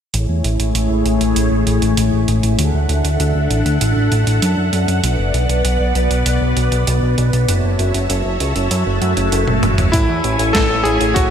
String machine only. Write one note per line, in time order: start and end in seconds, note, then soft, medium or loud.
0.14 2.56 A3 medium
0.14 2.56 E4 medium
0.14 2.56 G#4 medium
0.14 2.56 C#5 medium
2.59 5.01 D4 medium
2.59 5.01 A4 medium
2.59 5.01 E5 medium
2.59 7.44 F#5 medium
5.03 7.46 B3 medium
5.03 7.46 B4 medium
5.03 7.46 D5 medium
7.49 9.91 F#4 medium
7.49 9.91 C#5 medium
7.49 9.91 E5 medium
7.49 9.91 A5 medium
9.94 11.30 A3 medium
9.94 11.30 E4 medium
9.94 11.30 C#5 medium
9.94 11.30 G#5 medium